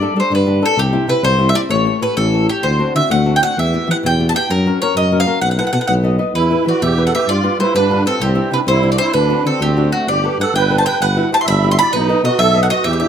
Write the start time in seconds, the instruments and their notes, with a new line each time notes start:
Already playing: nylon-string guitar G3, mandolin D5
0.01 nylon-string guitar D4 G4 A4
0.16 tuba G3, nylon-string guitar D4 G4 A4, mandolin C5
0.31 tuba G2, nylon-string guitar D3, mandolin B4
0.46 nylon-string guitar D4 G4 A4
0.62 nylon-string guitar D4 G4 A4, mandolin A4
0.77 tuba C2, nylon-string guitar C3, mandolin G4
0.92 nylon-string guitar C4 E4 G4
1.08 tuba C3, nylon-string guitar C4 E4 G4, mandolin B4
1.23 tuba C2, nylon-string guitar G3, mandolin C5
1.39 nylon-string guitar C4 E4 G4
1.49 mandolin E5
1.54 nylon-string guitar C4 E4 G4, mandolin D5
1.69 tuba A1, nylon-string guitar A3, mandolin C#5
1.86 nylon-string guitar G4 A4 C#5
2.02 tuba A2, nylon-string guitar G4 A4 C#5, mandolin B4
2.17 tuba A1, nylon-string guitar E3, mandolin A4
2.34 nylon-string guitar G4 A4 C#5
2.49 nylon-string guitar G4 A4 C#5, mandolin G4
2.63 tuba D2, nylon-string guitar D3, mandolin C5
2.79 nylon-string guitar C4 D4 F#4
2.95 tuba D3, nylon-string guitar C4 D4 F#4, mandolin E5
3.10 tuba D2, nylon-string guitar A3, mandolin F#5
3.26 nylon-string guitar C4 D4 F#4
3.36 mandolin G5
3.41 nylon-string guitar C4 D4 F#4, mandolin F#5
3.57 tuba E2, nylon-string guitar E3, mandolin E5
3.73 nylon-string guitar B3 E4 G4
3.87 tuba E3, nylon-string guitar B3 E4 G4
3.91 mandolin F#5
4.03 tuba E2, nylon-string guitar B2, mandolin G5
4.19 nylon-string guitar B3 E4 G4
4.29 mandolin A5
4.34 nylon-string guitar B3 E4 G4, mandolin G5
4.50 tuba F#2, nylon-string guitar F#3, mandolin A#4
4.66 nylon-string guitar C#4 F#4 A#4
4.82 nylon-string guitar C#4 F#4 A#4, mandolin C#5
4.95 tuba F#2, nylon-string guitar C#3, mandolin D#5
5.12 nylon-string guitar C#4 F#4 A#4
5.20 mandolin F5
5.26 nylon-string guitar C#4 F#4 A#4
5.41 tuba B1, nylon-string guitar B3, mandolin F#5
5.51 mandolin F#5
5.58 nylon-string guitar E4 A4 B4, mandolin F#5
5.67 mandolin F#5
5.73 tuba B2, nylon-string guitar E4 A4 B4, mandolin F#5
5.81 mandolin F#5
5.87 tuba B1, nylon-string guitar B3, mandolin F#5
6.03 nylon-string guitar A4 B4 D#5
6.18 nylon-string guitar A4 B4 D#5
6.35 tuba E2, nylon-string guitar E3, accordion E4, mandolin B4
6.50 nylon-string guitar E4 G4 B4
6.65 tuba E3, nylon-string guitar E4 G4 B4, accordion F#4, mandolin D5
6.82 tuba E2, nylon-string guitar B2, accordion G4, mandolin E5
6.98 nylon-string guitar E4 G4 B4
7.06 accordion A4, mandolin F#5
7.13 nylon-string guitar E4 G4 B4, accordion G4, mandolin E5
7.28 tuba G2, nylon-string guitar G3, accordion F4, mandolin D5
7.43 nylon-string guitar F4 G4 B4
7.59 tuba G3, accordion E4, nylon-string guitar F4 G4 B4, mandolin C5
7.75 tuba G2, nylon-string guitar D3, accordion D4, mandolin B4
7.90 nylon-string guitar F4 G4 B4
8.05 accordion C4, nylon-string guitar F4 G4 B4, mandolin A4
8.20 tuba C2, nylon-string guitar C3, accordion C4, mandolin G4
8.35 nylon-string guitar C4 D4 E4
8.51 tuba C3, nylon-string guitar C4 D4 E4, accordion D4, mandolin B4
8.67 tuba C2, nylon-string guitar G3, accordion E4, mandolin C5
8.83 nylon-string guitar C4 D4 E4
8.92 accordion F#4, mandolin D5
8.98 nylon-string guitar C4 D4 E4, accordion E4, mandolin C5
9.13 tuba D2, nylon-string guitar D3, accordion D4, mandolin B4
9.29 nylon-string guitar C4 D4 F#4
9.45 tuba D3, nylon-string guitar C4 D4 F#4, accordion C4, mandolin A4
9.60 tuba D2, nylon-string guitar A3, accordion C4, mandolin G4
9.77 nylon-string guitar C4 D4 F#4
9.92 accordion A3, nylon-string guitar C4 D4 F#4, mandolin F#4
10.07 tuba G1, nylon-string guitar G3, accordion G4, mandolin D5
10.24 nylon-string guitar G4 A4 B4
10.38 tuba G2, nylon-string guitar G4 A4 B4, accordion A4, mandolin F#5
10.53 tuba G1, nylon-string guitar D3, accordion B4, mandolin G5
10.70 nylon-string guitar G4 A4 B4
10.78 accordion C5, mandolin A5
10.85 nylon-string guitar G4 A4 B4, accordion B4, mandolin G5
11.00 tuba G1, nylon-string guitar G3, accordion B4, mandolin F#5
11.17 nylon-string guitar E4 F#4 G4
11.32 nylon-string guitar E4 F#4 G4, accordion C5, mandolin A5
11.41 accordion E5, mandolin C6
11.46 tuba G1, nylon-string guitar G3, accordion E5, mandolin B5
11.63 nylon-string guitar E4 F#4 G4
11.71 accordion E5, mandolin C6
11.79 nylon-string guitar E4 F#4 G4, accordion D5, mandolin B5
11.93 tuba B1, nylon-string guitar B3, accordion D#4, mandolin B4
12.08 nylon-string guitar A4 B4 D#5
12.24 tuba B2, accordion F#4, nylon-string guitar A4 B4 D#5, mandolin D#5
12.38 tuba B1, nylon-string guitar F#3, accordion A4, mandolin E5
12.54 nylon-string guitar A4 B4 D#5
12.62 accordion A4, mandolin F#5
12.70 accordion F#4, nylon-string guitar A4 B4 D#5, mandolin D#5
12.84 tuba E2, nylon-string guitar E3, accordion G4, mandolin E5
13.00 nylon-string guitar D4 E4 G4, mandolin E5